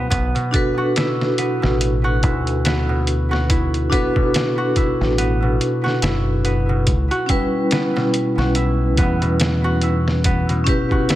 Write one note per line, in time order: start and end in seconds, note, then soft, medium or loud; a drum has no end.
0.00 0.16 B2 medium
0.00 0.17 E4 medium
0.00 0.77 F#4 medium
0.10 0.33 B1 loud
0.10 1.38 B3 loud
0.10 kick loud
0.10 closed hi-hat medium
0.35 1.61 B2 medium
0.35 closed hi-hat soft
0.51 3.86 D4 medium
0.51 3.87 F#4 medium
0.51 3.87 A4 medium
0.51 kick loud
0.51 closed hi-hat medium
0.56 3.88 B4 medium
0.78 2.04 F#4 loud
0.96 2.22 E4 medium
0.96 snare loud
0.96 closed hi-hat medium
1.21 snare soft
1.38 2.65 B3 loud
1.38 closed hi-hat medium
1.62 2.23 A1 medium
1.62 2.88 B2 medium
1.62 snare soft
1.81 closed hi-hat medium
2.04 3.31 F#4 loud
2.23 3.88 D2 medium
2.23 3.49 E4 medium
2.23 kick loud
2.23 closed hi-hat medium
2.47 closed hi-hat soft
2.65 3.91 B3 loud
2.65 snare loud
2.65 closed hi-hat medium
2.89 4.15 B2 medium
3.07 closed hi-hat medium
3.31 4.57 F#4 loud
3.31 snare soft
3.50 4.76 E4 medium
3.50 kick loud
3.50 closed hi-hat medium
3.74 closed hi-hat soft
3.90 5.18 B3 loud
3.90 6.84 D4 medium
3.90 6.85 F#4 medium
3.90 6.85 A4 medium
3.90 kick medium
3.90 closed hi-hat medium
3.94 6.86 B4 medium
4.16 5.41 B2 medium
4.16 kick medium
4.34 snare loud
4.34 closed hi-hat medium
4.58 5.83 F#4 loud
4.76 6.02 E4 medium
4.76 kick loud
4.76 closed hi-hat medium
5.01 5.57 A1 loud
5.01 snare soft
5.18 6.44 B3 loud
5.18 closed hi-hat medium
5.42 6.68 B2 medium
5.61 closed hi-hat medium
5.84 7.10 F#4 loud
5.84 snare soft
6.02 6.83 F#1 medium
6.02 7.29 E4 medium
6.02 snare loud
6.02 closed hi-hat medium
6.44 7.71 B3 medium
6.44 closed hi-hat medium
6.69 6.92 B2 medium
6.87 7.08 C#2 loud
6.87 kick loud
6.87 closed hi-hat medium
7.11 8.38 F#4 loud
7.11 closed hi-hat soft
7.26 10.63 G3 medium
7.26 10.61 C#4 medium
7.26 10.62 E4 medium
7.26 8.55 E4 medium
7.26 kick medium
7.26 closed hi-hat medium
7.31 10.64 B4 medium
7.71 8.98 B3 loud
7.71 snare loud
7.71 closed hi-hat medium
7.96 9.21 B2 medium
7.96 snare soft
8.14 closed hi-hat medium
8.38 8.98 B1 loud
8.38 9.64 F#4 loud
8.38 snare soft
8.55 9.83 E4 medium
8.55 closed hi-hat medium
8.97 10.64 E2 medium
8.97 10.25 B3 loud
8.97 kick loud
8.97 closed hi-hat medium
9.22 10.48 B2 medium
9.22 closed hi-hat soft
9.40 snare loud
9.40 closed hi-hat medium
9.64 10.91 F#4 loud
9.81 11.09 E4 medium
9.81 closed hi-hat medium
10.08 snare soft
10.24 11.15 B3 loud
10.24 kick loud
10.24 closed hi-hat medium
10.49 11.15 B2 medium
10.49 closed hi-hat soft
10.64 11.15 C#4 medium
10.64 11.15 E4 medium
10.64 11.15 G4 medium
10.64 kick loud
10.64 closed hi-hat medium
10.69 11.15 B4 medium
10.91 11.15 F#4 loud
10.91 kick medium
11.09 11.15 E4 medium
11.09 snare loud
11.09 closed hi-hat medium